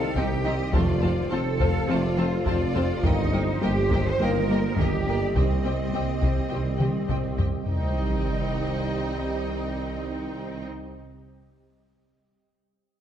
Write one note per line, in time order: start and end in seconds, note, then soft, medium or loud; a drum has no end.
0.00 0.10 C2 medium
0.00 0.75 D#3 medium
0.00 0.75 D#4 medium
0.00 0.75 G4 medium
0.00 0.17 A4 medium
0.00 3.06 C5 medium
0.00 0.17 F5 medium
0.16 0.34 C2 medium
0.16 0.68 C2 medium
0.16 0.35 C3 medium
0.16 0.25 C4 medium
0.16 0.25 D#4 medium
0.16 0.73 G4 medium
0.16 0.74 G4 medium
0.16 0.24 D#5 medium
0.16 0.24 G5 medium
0.16 0.46 G5 medium
0.16 taiko medium
0.45 0.62 C2 medium
0.45 0.53 C4 medium
0.45 0.53 D#4 medium
0.45 0.53 D#5 medium
0.45 0.74 D#5 medium
0.45 0.53 G5 soft
0.73 1.25 F1 medium
0.73 0.91 F2 medium
0.73 0.95 C3 medium
0.73 3.06 F3 medium
0.73 0.92 F3 medium
0.73 0.94 A3 medium
0.73 0.81 C4 medium
0.73 3.06 C4 medium
0.73 0.81 F4 medium
0.73 1.32 F4 medium
0.73 1.31 F4 medium
0.73 3.06 A4 medium
0.73 0.81 C5 medium
0.73 1.30 D5 medium
0.73 0.81 A5 medium
0.73 taiko loud
1.02 1.20 F3 medium
1.02 1.10 C4 soft
1.02 1.10 F4 soft
1.02 1.10 C5 soft
1.02 1.10 A5 soft
1.02 taiko low soft
1.31 1.83 F1 medium
1.31 1.49 F3 medium
1.31 1.39 C4 medium
1.31 1.50 C4 medium
1.31 1.39 F4 medium
1.31 1.88 A4 medium
1.31 1.90 A4 medium
1.31 1.39 C5 medium
1.31 1.61 C5 medium
1.31 1.39 A5 medium
1.60 1.78 F2 medium
1.60 1.78 F3 medium
1.60 1.68 C4 medium
1.60 1.68 F4 medium
1.60 1.68 C5 medium
1.60 1.88 F5 medium
1.60 1.68 A5 medium
1.60 taiko medium
1.89 2.40 F1 medium
1.89 2.10 C3 medium
1.89 2.07 F3 medium
1.89 2.10 A3 medium
1.89 1.97 C4 medium
1.89 2.06 C4 medium
1.89 1.97 F4 medium
1.89 2.45 F4 medium
1.89 2.46 F4 medium
1.89 1.97 C5 medium
1.89 2.17 D5 medium
1.89 1.98 A5 medium
2.17 2.35 F3 medium
2.17 2.25 C4 medium
2.17 2.36 C4 medium
2.17 2.25 F4 medium
2.17 2.26 C5 medium
2.17 2.47 C5 medium
2.17 2.26 A5 medium
2.46 2.90 F1 medium
2.46 2.98 F1 medium
2.46 2.64 F2 medium
2.46 2.64 F3 medium
2.46 2.54 C4 medium
2.46 2.54 F4 medium
2.46 3.03 F4 medium
2.46 3.04 F4 medium
2.46 2.54 C5 medium
2.46 3.05 D5 medium
2.46 2.54 A5 medium
2.46 taiko medium
2.75 2.93 F2 medium
2.75 2.83 C4 medium
2.75 2.83 F4 medium
2.75 2.84 C5 medium
2.75 2.84 A5 medium
3.03 3.56 G1 medium
3.03 3.22 G2 medium
3.03 3.22 D#3 medium
3.03 3.26 D#3 medium
3.03 7.65 G3 medium
3.03 3.11 A#3 medium
3.03 5.36 A#3 medium
3.03 3.26 A#3 medium
3.03 3.62 D#4 medium
3.03 3.63 D#4 medium
3.03 7.66 G4 medium
3.03 3.11 A#4 medium
3.03 3.33 D#5 medium
3.03 7.66 D#5 medium
3.03 3.14 D#5 medium
3.03 3.13 G5 medium
3.03 taiko loud
3.32 3.51 G3 medium
3.32 3.40 A#3 medium
3.32 3.40 A#4 medium
3.32 4.78 C5 medium
3.32 3.41 D#5 medium
3.32 3.42 G5 medium
3.62 4.13 G1 medium
3.62 4.14 G1 medium
3.62 3.79 G3 medium
3.62 3.70 A#3 medium
3.62 3.80 A#3 medium
3.62 4.05 G4 medium
3.62 3.70 A#4 medium
3.62 3.70 D#5 medium
3.62 3.71 G5 medium
3.90 4.08 G2 medium
3.90 4.09 D#3 medium
3.90 3.98 A#3 medium
3.90 3.99 A#4 medium
3.90 4.01 D#5 medium
3.90 4.01 G5 medium
3.90 taiko medium
4.05 4.19 C5 medium
4.05 4.20 C5 loud
4.20 4.71 G1 medium
4.20 4.42 D#3 medium
4.20 4.38 G3 medium
4.20 4.29 A#3 medium
4.20 4.38 A#3 medium
4.20 4.41 A#3 medium
4.20 4.29 A#4 medium
4.20 4.78 A#4 medium
4.20 4.79 A#4 medium
4.20 4.30 D#5 medium
4.20 4.30 G5 medium
4.49 4.66 G3 medium
4.49 4.57 A#3 medium
4.49 4.67 A#3 medium
4.49 4.57 A#4 medium
4.49 4.59 D#5 medium
4.49 4.59 G5 medium
4.76 5.29 G1 medium
4.76 4.94 G2 medium
4.76 4.96 D#3 medium
4.76 4.86 A#3 medium
4.76 5.36 G4 medium
4.76 4.85 A#4 medium
4.76 5.07 A#4 medium
4.76 4.88 D#5 medium
4.76 4.87 G5 medium
4.76 taiko medium
5.06 5.24 G2 medium
5.06 5.15 A#3 soft
5.06 5.15 A#4 medium
5.06 5.35 D5 medium
5.06 5.17 D#5 soft
5.06 5.16 G5 soft
5.34 5.86 C2 medium
5.34 5.53 C2 medium
5.34 5.87 C2 medium
5.34 5.54 C3 medium
5.34 5.57 D#3 medium
5.34 5.56 G3 medium
5.34 5.44 C4 medium
5.34 7.34 C4 medium
5.34 7.38 C4 medium
5.34 7.66 C4 medium
5.34 5.44 G4 medium
5.34 7.37 D#5 medium
5.34 5.44 D#5 medium
5.34 5.44 G5 medium
5.34 taiko loud
5.64 5.82 C3 medium
5.64 5.73 C4 soft
5.64 5.73 G4 soft
5.64 5.73 D#5 soft
5.64 5.73 G5 soft
5.93 6.45 C2 medium
5.93 6.11 C3 medium
5.93 6.11 G3 medium
5.93 6.02 C4 soft
5.93 6.02 G4 soft
5.93 6.02 D#5 soft
5.93 6.01 G5 soft
6.21 6.39 C2 medium
6.21 6.40 C3 medium
6.21 6.31 C4 soft
6.21 6.31 G4 soft
6.21 6.29 D#5 soft
6.21 6.29 G5 soft
6.21 taiko medium
6.49 7.02 C2 medium
6.49 6.69 C3 medium
6.49 6.71 D#3 soft
6.49 6.72 G3 soft
6.49 6.69 G3 medium
6.49 6.60 C4 soft
6.49 6.59 G4 soft
6.49 6.57 D#5 soft
6.49 6.57 G5 soft
6.79 6.97 C3 medium
6.79 6.98 G3 medium
6.79 6.88 C4 soft
6.79 6.89 G4 soft
6.79 6.87 D#5 soft
6.79 6.87 G5 soft
6.79 taiko mid medium
7.08 7.26 C2 medium
7.08 7.60 C2 medium
7.08 7.60 C2 soft
7.08 7.27 C3 medium
7.08 7.17 C4 soft
7.08 7.17 G4 soft
7.08 7.17 D#5 soft
7.08 7.16 G5 soft
7.08 taiko low-mid medium
7.37 7.54 C2 medium
7.37 7.45 C4 soft
7.37 7.45 G4 soft
7.37 7.45 D#5 soft
7.37 7.45 G5 soft
7.37 taiko low medium
7.66 10.65 C2 medium
7.66 10.66 D#3 medium
7.66 10.65 G3 medium
7.66 10.66 G3 medium
7.66 10.65 C4 medium
7.66 10.65 D#4 medium
7.66 10.66 G4 medium
7.66 10.66 D#5 medium
7.66 10.65 G5 medium
7.66 sub drop medium